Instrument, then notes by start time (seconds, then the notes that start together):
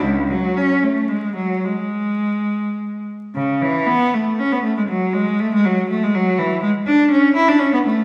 cello
0.04 C#2
0.31 F#3
0.57 C#4
0.82 A3
1.08 G#3
1.36 F#3
1.65 G#3
3.35 C#3
3.62 E3
3.87 B3
4.14 A3
4.39 C#4
4.52 B3
4.63 A3
4.77 G#3
4.88 F#3
5.14 G#3
5.40 A3
5.55 G#3
5.65 F#3
5.89 A3
6.04 G#3
6.15 F#3
6.38 E3
6.62 G#3
6.87 D4
7.12 C#4
7.36 E4
7.49 D4
7.59 C#4
7.74 B3
7.85 A3